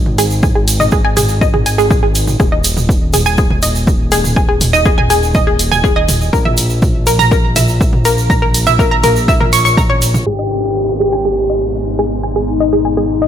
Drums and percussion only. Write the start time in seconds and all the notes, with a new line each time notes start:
0.06 mid tom
0.18 open hi-hat, shaker
0.30 shaker
0.43 kick, mid tom, shaker
0.68 open hi-hat, shaker
0.80 mid tom, shaker
0.91 kick, shaker
1.17 mid tom, open hi-hat, shaker
1.28 shaker
1.41 kick, shaker
1.54 mid tom
1.66 open hi-hat, shaker
1.79 shaker
1.90 kick, mid tom, shaker
2.15 open hi-hat, shaker
2.27 mid tom, shaker
2.40 kick, mid tom, shaker
2.64 open hi-hat, shaker
2.77 mid tom, shaker
2.89 kick, shaker
3.13 mid tom, open hi-hat, shaker
3.26 shaker
3.37 kick, shaker
3.50 mid tom
3.62 open hi-hat, shaker
3.75 shaker
3.87 kick, mid tom, shaker
4.12 open hi-hat, shaker
4.24 mid tom, shaker
4.36 kick, shaker
4.61 mid tom, open hi-hat, shaker
4.74 shaker
4.85 kick, shaker
4.98 mid tom
5.10 open hi-hat, shaker
5.23 shaker
5.34 kick, mid tom, shaker
5.59 open hi-hat, shaker
5.72 mid tom, shaker
5.84 kick, shaker
6.09 mid tom, open hi-hat, shaker
6.21 shaker
6.33 kick, shaker
6.45 mid tom
6.57 open hi-hat, shaker
6.69 shaker
6.82 kick, mid tom, shaker
7.07 open hi-hat, shaker
7.19 mid tom, shaker
7.31 kick, shaker
7.56 mid tom, open hi-hat, shaker
7.68 shaker
7.81 kick, shaker
7.93 mid tom
8.05 open hi-hat, shaker
8.18 shaker
8.30 kick, mid tom, shaker
8.54 open hi-hat, shaker
8.67 mid tom, shaker
8.79 kick, shaker
9.04 mid tom, open hi-hat, shaker
9.16 shaker
9.28 kick, shaker
9.40 mid tom
9.53 open hi-hat, shaker
9.65 shaker
9.77 kick, mid tom, shaker
10.02 open hi-hat, shaker
10.14 mid tom, shaker
10.27 crash